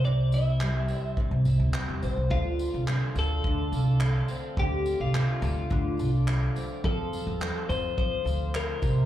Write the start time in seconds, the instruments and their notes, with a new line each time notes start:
Already playing: upright bass C2, steel-string acoustic guitar C4
0.04 steel-string acoustic guitar C3, clean electric guitar D5
0.32 steel-string acoustic guitar E4, clean electric guitar E5, tambourine
0.61 steel-string acoustic guitar G3, clap
0.88 steel-string acoustic guitar C4, tambourine
1.17 steel-string acoustic guitar C3, kick
1.31 upright bass C3
1.45 upright bass C2, steel-string acoustic guitar E4, tambourine
1.60 upright bass D2
1.74 steel-string acoustic guitar G3, clap
1.89 upright bass E2
2.02 upright bass A#1, steel-string acoustic guitar C5, tambourine
2.17 upright bass C2
2.30 upright bass D2, steel-string acoustic guitar D3, clean electric guitar F4, tonewheel organ A4 D5 F5 C6, kick
2.59 steel-string acoustic guitar F4, tambourine
2.74 upright bass C2
2.88 steel-string acoustic guitar A3, clap
3.16 upright bass D2, steel-string acoustic guitar A4, clean electric guitar A4, tambourine
3.44 upright bass D2, steel-string acoustic guitar D3, kick
3.72 upright bass C2, steel-string acoustic guitar F4, tambourine
4.00 steel-string acoustic guitar A3, clap
4.28 steel-string acoustic guitar C4, tambourine
4.57 upright bass D2, steel-string acoustic guitar D3, clean electric guitar G4, tonewheel organ D6, kick
4.86 steel-string acoustic guitar F4, tambourine
5.00 upright bass C2, clean electric guitar F4
5.14 steel-string acoustic guitar A3, clap
5.42 upright bass D2, steel-string acoustic guitar A4, tambourine
5.70 upright bass D2, steel-string acoustic guitar D3, kick
5.98 upright bass C2, steel-string acoustic guitar F4, tambourine
6.27 steel-string acoustic guitar A3, clap
6.56 steel-string acoustic guitar C4, tambourine
6.84 upright bass F2, steel-string acoustic guitar F3, clean electric guitar A4, tonewheel organ C5 C6, kick
7.13 steel-string acoustic guitar F4, tambourine
7.27 upright bass E2
7.40 steel-string acoustic guitar A3, clap
7.69 upright bass F2, clean electric guitar C5, tambourine
7.98 upright bass F2, steel-string acoustic guitar F3, clean electric guitar C5, kick
8.25 upright bass D2, steel-string acoustic guitar F4, tambourine
8.55 clean electric guitar A#4, clap
8.82 upright bass C2, steel-string acoustic guitar C3, tonewheel organ G4 E5, kick, tambourine